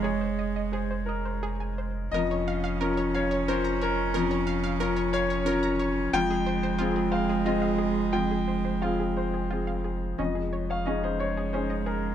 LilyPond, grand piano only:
\new Staff \with { instrumentName = "Grand piano" } { \time 3/4 \key bes \dorian \tempo 4 = 89 << { des''4 c''8 bes'4. | ees''4. des''8 c''8 bes'8~ | bes'4. des''4. | g''4. f''8 ees''4 |
g''4 f''8 c''4. | ees''8. f''16 ees''16 c''16 des''8 c''8 bes'8 | } \\ { <aes ees' aes'>2. | f,4 <des' f' bes'>4 <des' f' bes'>4 | f,4 <des' f' bes'>4 <des' f' bes'>4 | f,4 <c' f' aes'>4 <c' f' aes'>4 |
f,4 <c' f' aes'>4 <c' f' aes'>4 | f,4 <des' ees' aes'>4 <des' ees' aes'>4 | } >> }